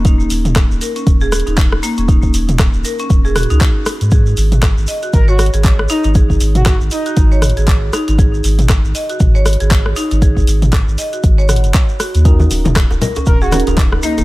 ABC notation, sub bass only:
X:1
M:4/4
L:1/16
Q:"Swing 16ths" 1/4=118
K:Abdor
V:1 name="Sub bass" clef=bass
E,,,2 E,,,3 E,,, z2 E,,,3 E,,,3 z E,,,- | E,,,2 E,,,3 E,,, z2 E,,,3 D,, z3 A,,- | A,,2 A,,,3 A,,, z2 A,,,3 A,,,3 z A,,,- | A,,,2 A,,,3 A,,, z2 A,,,3 A,,,3 z A,,,- |
A,,,2 A,,,3 A,,, z2 A,,,3 A,,,3 z A,,,- | A,,,2 A,,,3 A,,, z2 A,,,3 G,,, z3 E,,- | E,,2 E,,,3 E,,, z2 E,,,3 E,,,3 z E,,, |]